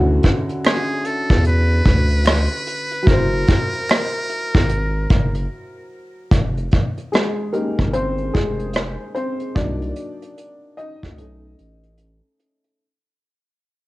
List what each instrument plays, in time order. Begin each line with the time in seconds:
Already playing: sub bass D2, upright piano D3 C#4 E4 F#4
0.23 kick, closed hi-hat
0.49 closed hi-hat
0.64 muted trumpet G#4, finger snap, cross-stick, closed hi-hat
1.05 muted trumpet A4, closed hi-hat
1.30 sub bass E2, kick, closed hi-hat
1.45 muted trumpet B4, closed hi-hat
1.85 sub bass D2, kick, closed hi-hat
2.11 closed hi-hat
2.25 finger snap, cross-stick, closed hi-hat
2.52 closed hi-hat
2.67 closed hi-hat
2.91 closed hi-hat
3.03 upright piano F#3 E4
3.07 sub bass F#1, muted trumpet A#4, upright piano A#4, kick, closed hi-hat
3.12 upright piano C5
3.47 kick, closed hi-hat
3.73 closed hi-hat
3.89 finger snap, cross-stick, closed hi-hat
4.13 closed hi-hat
4.29 closed hi-hat
4.55 sub bass G#1, kick, closed hi-hat
4.69 closed hi-hat
5.10 sub bass F#1, kick, closed hi-hat
5.35 closed hi-hat
6.31 sub bass F1, kick, closed hi-hat
6.57 closed hi-hat
6.71 kick, closed hi-hat
6.97 closed hi-hat
7.12 upright piano G#3 G#4, cross-stick, closed hi-hat
7.53 upright piano G#3 A#3 D#4 G4 A#4, closed hi-hat
7.79 sub bass G1, kick, closed hi-hat
7.93 upright piano C4 C5, closed hi-hat
8.18 closed hi-hat
8.33 sub bass F1, upright piano G#3 G#4, kick, closed hi-hat
8.59 closed hi-hat
8.73 cross-stick, closed hi-hat
9.15 upright piano C4 C5, closed hi-hat
9.40 closed hi-hat
9.55 sub bass C2, upright piano F#3 A#3 D4 D#4 D5, kick, closed hi-hat
9.82 closed hi-hat
9.96 closed hi-hat
10.22 closed hi-hat
10.38 closed hi-hat
10.77 upright piano D#4 D#5, closed hi-hat
11.03 sub bass D2, kick, closed hi-hat
11.18 sub bass B1, upright piano A3 C#4 D#4, closed hi-hat
11.59 sub bass A1, closed hi-hat
11.83 closed hi-hat
11.98 closed hi-hat
12.40 closed hi-hat
12.64 closed hi-hat